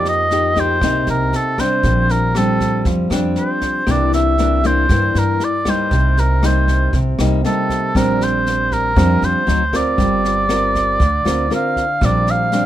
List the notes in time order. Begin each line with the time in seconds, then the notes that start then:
Already playing: F2 F3 A#3 D#4 G4
0.05 D#5, snare
0.31 A#3 D#4 G4, snare
0.56 A#3 D#4 G4, kick, snare
0.60 C5
0.81 C2 C3 A#3 D#4 G4, kick, cross-stick, snare
1.07 C2 A#4, snare
1.33 A4, snare
1.58 G3 C4 D4 C5, kick, cross-stick, snare
1.83 A#1 A#2, kick, snare
2.09 A#4, snare
2.35 G3 C4 D4 A4, cross-stick, snare
2.60 kick, snare
2.85 F2 F3, kick, snare
3.10 F2 G3 C4 D4, cross-stick, snare
3.36 C5, snare
3.61 kick, snare
3.87 C2 C3 E3 A#3 D4, kick, cross-stick, snare
3.91 D5
4.13 E5, snare
4.38 E3 A#3 D4, snare
4.64 E3 A#3 D4 C5, kick, snare
4.89 G2 E3 A#3 D4, kick, cross-stick, snare
5.15 G2, snare
5.19 A#4
5.40 snare
5.45 D5
5.65 G3 A#3 D#4, kick, cross-stick, snare
5.70 C5
5.91 C2 C3, kick, snare
6.17 A#4, snare
6.43 G3 A#3 D#4 C5, cross-stick, snare
6.68 kick, snare
6.93 C2 C3, kick, snare
7.18 C2 G3 A#3 D#4, cross-stick, snare
7.44 G3 A#3 D#4 A4, snare
7.69 kick, snare
7.95 A#1 A#2 G3 C4 D4 A#4, kick, cross-stick, snare
8.21 C5, snare
8.46 snare
8.71 A#4, kick, snare
8.96 F2 F3 G3 C4 D4, kick, cross-stick, snare
9.22 F2 C5, snare
9.47 D2 F#3 C4 D#4, snare
9.73 C4 F4 A#4 D5, kick, cross-stick, snare
9.98 G1 G3, kick, snare
10.25 snare
10.49 C4 F4 A#4, cross-stick, snare
10.75 kick, snare
11.00 D2 D3, kick, snare
11.25 D2 C4 F4 A#4, cross-stick, snare
11.50 C4 F4 A#4, snare
11.55 F5
11.76 kick, snare
12.01 A#1 A#2 G3 C4 D4, kick, cross-stick, snare
12.05 D5
12.27 F5, snare
12.52 G3 C4 D4, snare